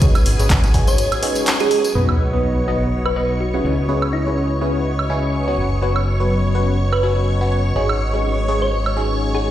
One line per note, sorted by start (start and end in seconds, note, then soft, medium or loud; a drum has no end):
0.00 0.16 G#3 medium
0.00 0.16 C#4 medium
0.00 0.16 D#4 medium
0.00 7.74 F#4 medium
0.00 0.16 F#4 medium
0.00 1.96 G#4 medium
0.00 0.16 G#4 medium
0.00 7.76 B4 medium
0.00 0.16 C#5 loud
0.00 7.76 D#5 medium
0.00 1.96 G#5 medium
0.00 kick loud
0.00 closed hi-hat loud
0.15 closed hi-hat soft
0.15 tambourine soft
0.15 high woodblock medium
0.26 0.36 G#1 medium
0.26 open hi-hat loud
0.39 0.95 G#1 medium
0.39 0.72 G#3 medium
0.39 0.72 C#4 medium
0.39 0.72 D#4 medium
0.39 0.72 F#4 medium
0.39 0.72 G#4 medium
0.39 0.72 C#5 medium
0.39 closed hi-hat soft
0.39 tambourine medium
0.50 kick loud
0.50 clap loud
0.50 closed hi-hat medium
0.50 tambourine medium
0.64 closed hi-hat soft
0.64 tambourine soft
0.74 0.95 G#3 medium
0.74 0.95 C#4 medium
0.74 0.95 D#4 medium
0.74 0.95 F#4 medium
0.74 0.95 G#4 medium
0.74 0.95 C#5 loud
0.74 kick medium
0.74 open hi-hat medium
0.87 1.03 C#5 medium
0.87 closed hi-hat soft
0.87 tambourine medium
0.98 closed hi-hat medium
0.98 tambourine medium
1.12 closed hi-hat soft
1.12 tambourine soft
1.12 high woodblock medium
1.23 1.57 G#3 medium
1.23 1.57 C#4 medium
1.23 1.57 D#4 medium
1.23 1.57 F#4 medium
1.23 1.57 G#4 medium
1.23 1.57 C#5 loud
1.23 open hi-hat loud
1.35 closed hi-hat soft
1.35 tambourine medium
1.47 clap loud
1.47 closed hi-hat loud
1.47 tambourine medium
1.60 1.80 G#3 medium
1.60 1.80 C#4 medium
1.60 1.80 D#4 medium
1.60 1.80 F#4 medium
1.60 1.80 G#4 medium
1.60 1.95 G#4 medium
1.60 1.80 C#5 loud
1.60 closed hi-hat soft
1.60 tambourine soft
1.71 open hi-hat medium
1.84 closed hi-hat soft
1.84 tambourine medium
1.95 3.62 B1 medium
1.95 2.09 B2 medium
1.95 2.09 B3 medium
1.95 2.09 D#4 medium
1.95 2.09 F#4 medium
1.95 2.09 B4 medium
1.95 9.51 C#5 medium
1.95 2.09 D#5 medium
1.95 9.51 C#6 medium
1.95 sub drop medium
2.09 high woodblock medium
2.33 2.65 B2 medium
2.33 2.65 B3 medium
2.33 2.65 D#4 medium
2.33 2.65 F#4 medium
2.33 2.65 B4 medium
2.33 2.65 D#5 medium
2.68 2.88 B2 medium
2.68 2.88 B3 medium
2.68 2.88 D#4 medium
2.68 2.88 F#4 medium
2.68 2.88 B4 medium
2.68 2.88 D#5 loud
3.06 3.12 B4 medium
3.06 high woodblock medium
3.16 3.51 B2 medium
3.16 3.51 B3 medium
3.16 3.51 D#4 medium
3.16 3.51 F#4 medium
3.16 3.51 B4 medium
3.16 3.25 B4 medium
3.16 3.51 D#5 medium
3.41 3.49 F#4 medium
3.54 3.74 C#3 medium
3.54 3.74 C#4 medium
3.54 3.74 E4 medium
3.54 3.61 F#4 medium
3.54 3.74 G#4 medium
3.54 3.74 B4 medium
3.54 3.74 C#5 medium
3.65 5.56 C#2 medium
3.89 4.03 C#3 medium
3.89 4.03 C#4 medium
3.89 4.03 E4 medium
3.89 4.03 G#4 medium
3.89 4.03 B4 medium
3.89 4.03 C#5 loud
4.02 high woodblock medium
4.13 4.61 E4 medium
4.27 4.59 C#3 medium
4.27 4.59 C#4 medium
4.27 4.59 E4 medium
4.27 4.59 G#4 medium
4.27 4.59 B4 medium
4.27 4.59 C#5 medium
4.61 4.82 C#3 medium
4.61 4.82 C#4 medium
4.61 4.82 E4 medium
4.61 4.82 G#4 medium
4.61 4.82 B4 medium
4.61 4.82 C#5 loud
4.99 high woodblock medium
5.10 5.44 C#3 medium
5.10 5.44 C#4 medium
5.10 5.44 E4 medium
5.10 5.44 G#4 medium
5.10 5.44 B4 medium
5.10 5.44 C#5 medium
5.48 5.67 F#3 medium
5.48 5.67 B3 medium
5.48 5.67 C#4 medium
5.48 5.67 F#4 medium
5.48 5.67 B4 medium
5.48 5.67 C#5 medium
5.58 7.74 F#1 medium
5.82 5.96 F#3 medium
5.82 5.96 B3 medium
5.82 5.96 C#4 medium
5.82 5.96 F#4 medium
5.82 5.96 B4 medium
5.82 5.96 C#5 loud
5.96 high woodblock medium
6.20 6.52 F#3 medium
6.20 6.52 B3 medium
6.20 6.52 C#4 medium
6.20 6.52 F#4 medium
6.20 6.52 B4 medium
6.20 6.52 C#5 medium
6.55 6.76 F#3 medium
6.55 6.76 B3 medium
6.55 6.76 C#4 medium
6.55 6.76 F#4 medium
6.55 6.76 B4 medium
6.55 6.76 C#5 medium
6.93 6.99 B4 medium
6.93 high woodblock medium
7.03 7.38 F#3 medium
7.03 7.38 B3 medium
7.03 7.38 C#4 medium
7.03 7.38 F#4 medium
7.03 7.12 B4 medium
7.03 7.38 B4 medium
7.03 7.38 C#5 loud
7.41 7.61 F#3 medium
7.41 7.61 B3 medium
7.41 7.61 C#4 medium
7.41 7.61 F#4 medium
7.41 7.61 B4 medium
7.41 7.61 C#5 medium
7.76 9.51 G#1 medium
7.76 7.90 G#3 medium
7.76 7.90 C#4 medium
7.76 7.90 D#4 medium
7.76 9.51 F#4 medium
7.76 7.90 F#4 medium
7.76 7.90 G#4 medium
7.76 7.90 C#5 medium
7.89 high woodblock medium
8.13 8.46 G#3 medium
8.13 8.46 C#4 medium
8.13 8.46 D#4 medium
8.13 8.46 F#4 medium
8.13 8.46 G#4 medium
8.13 8.46 C#5 medium
8.48 8.69 G#3 medium
8.48 8.69 C#4 medium
8.48 8.69 D#4 medium
8.48 8.69 F#4 medium
8.48 8.69 G#4 medium
8.48 8.69 C#5 loud
8.62 9.51 B4 medium
8.62 8.77 C#5 medium
8.62 9.51 D#5 medium
8.86 high woodblock medium
8.97 9.31 G#3 medium
8.97 9.31 C#4 medium
8.97 9.31 D#4 medium
8.97 9.31 F#4 medium
8.97 9.31 G#4 medium
8.97 9.31 C#5 medium
9.35 9.51 G#3 medium
9.35 9.51 C#4 medium
9.35 9.51 D#4 medium
9.35 9.51 F#4 medium
9.35 9.51 G#4 medium
9.35 9.51 C#5 medium